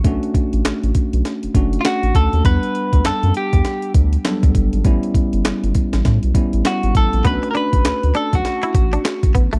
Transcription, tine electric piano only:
X:1
M:4/4
L:1/8
Q:"Swing 16ths" 1/4=100
K:Bm
V:1 name="Tine electric piano"
[A,CDF]4- [A,CDF] [A,CDF]3 | [G,B,Df]6 [F,G,B,DA]2 | [G,B,CE]4- [G,B,CE] [G,B,CE]3 | [A,CDF]8 |]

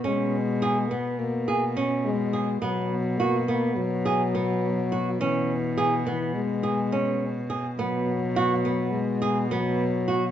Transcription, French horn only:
X:1
M:9/8
L:1/8
Q:3/8=70
K:C#dor
V:1 name="French horn" clef=bass
G,3 B, A,2 z G,2 | F,2 A, A, F,4- F, | E,3 E, G,4 z | F,4 G,2 F,3 |]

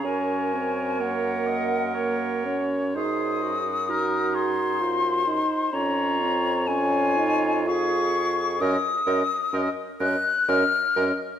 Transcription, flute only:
X:1
M:3/4
L:1/8
Q:1/4=64
K:Db
V:1 name="Flute"
a2 g2 g z | e'3 c'3 | b2 a2 d'2 | e'3 g' f' z |]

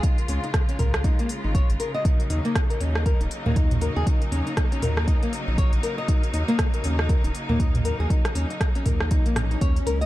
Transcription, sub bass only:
X:1
M:4/4
L:1/16
Q:"Swing 16ths" 1/4=119
K:Ebm
V:1 name="Sub bass" clef=bass
z2 D,, z3 D,,3 z2 A,,, z A,,, z2 | z2 E,, z3 E,,3 E,,, z E,,4 E,, | z2 E,, z3 E,,3 z2 B,,, z B,,, z2 | z2 E,, z3 E,,3 E,,, z E,,4 E,, |
z2 E,, z3 E,,3 B,,,3 E,, z D,,2 |]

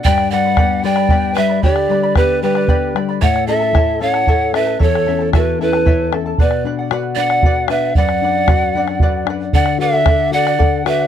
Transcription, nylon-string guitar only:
X:1
M:6/8
L:1/8
Q:3/8=76
K:Glyd
V:1 name="Nylon-string guitar"
G,, G, B, G, B, G, | D, G, B, G, B, G, | A,, C E C E C | E,, C E C E C |
B,, D F D F D | F,, D F D F D | D, F A F A F |]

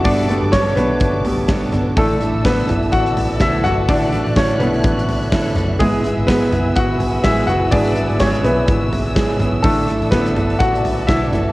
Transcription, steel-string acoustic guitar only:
X:1
M:4/4
L:1/8
Q:"Swing 16ths" 1/4=125
K:Glyd
V:1 name="Steel-string acoustic guitar"
[G,B,DA] [B,DA] [G,B,DA] [B,DA]3 [G,B,DA] [B,DA] | [A,,D,A,EA] [A,EA] [D,A,EA] [A,EA]3 [D,A,EA] [A,EA] | [A,,D,A,EA] [A,EA] [D,A,EA] [A,EA]3 [D,A,EA] [A,EA] | [^G,B,E^G] [B,EG] [G,B,EG] [B,EG]3 [G,B,EG] [B,EG] |
[^G,B,E^G] [B,EG] [G,B,EG] [B,EG]3 [G,B,EG] [B,EG] | [A,,D,A,EA] [A,EA] [D,A,EA] [A,EA]3 [D,A,EA] [A,EA] |]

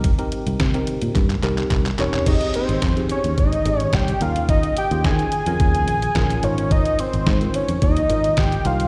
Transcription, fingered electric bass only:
X:1
M:4/4
L:1/16
Q:1/4=108
K:Fm
V:1 name="Fingered electric bass" clef=bass
z3 C,, C,2 z B,, G,,2 C,,2 C,,2 =E,,,2 | F,,, z2 A,,, F,,2 z E,, A,,,2 A,,,2 C,,2 E,,2- | E,, z2 E,, E,2 z F,, E,,2 B,,,2 B,,,2 A,,,2- | A,,, z2 A,,, A,,2 z F,, E,,2 A,,,2 A,,,2 C,,2 |]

